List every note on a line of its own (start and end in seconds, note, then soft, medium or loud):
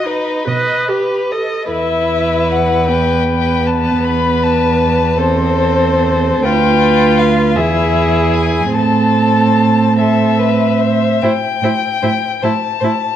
0.00 0.31 B2 soft
0.00 0.47 D#5 soft
0.05 0.47 D#4 soft
0.05 0.50 B4 soft
0.47 1.55 B2 soft
0.47 0.90 B4 soft
0.47 0.89 D#5 soft
0.89 1.33 G4 soft
0.89 1.34 B4 soft
1.31 1.71 A4 soft
1.31 1.71 D#5 soft
1.70 4.01 E2 soft
1.70 2.90 E4 soft
1.70 4.02 B4 soft
1.70 2.53 E5 medium
2.51 2.88 F#5 soft
2.89 5.19 B3 soft
2.89 3.68 G5 medium
3.66 4.06 A5 soft
4.04 6.40 E2 soft
4.04 5.20 B4 soft
4.04 4.44 B5 medium
4.43 5.20 A5 medium
5.19 6.46 C4 soft
5.19 6.45 A4 soft
5.19 6.43 C5 medium
6.43 7.57 D2 soft
6.43 7.59 F4 soft
6.43 7.58 B4 soft
6.43 7.20 G5 medium
7.18 7.57 F5 medium
7.56 8.73 E2 soft
7.56 8.74 E4 soft
7.56 8.75 G#4 soft
7.56 8.35 E5 medium
8.34 8.74 G#5 medium
8.74 10.97 A2 soft
8.74 10.98 C4 soft
8.74 9.90 A4 soft
8.74 9.96 A5 medium
9.98 10.41 A4 soft
9.98 11.24 E5 soft
10.39 10.82 B4 soft
10.81 11.22 C5 soft
11.22 11.30 A2 soft
11.22 11.31 E4 soft
11.22 11.31 C5 soft
11.22 12.45 G5 medium
11.62 11.70 A2 soft
11.62 11.72 E4 soft
11.62 11.71 C5 soft
12.02 12.10 A2 soft
12.02 12.11 E4 soft
12.02 12.10 C5 soft
12.42 12.51 A2 soft
12.42 12.52 E4 soft
12.42 12.50 C5 soft
12.42 13.16 A5 medium
12.80 12.90 A2 soft
12.80 12.92 E4 soft
12.80 12.88 C5 soft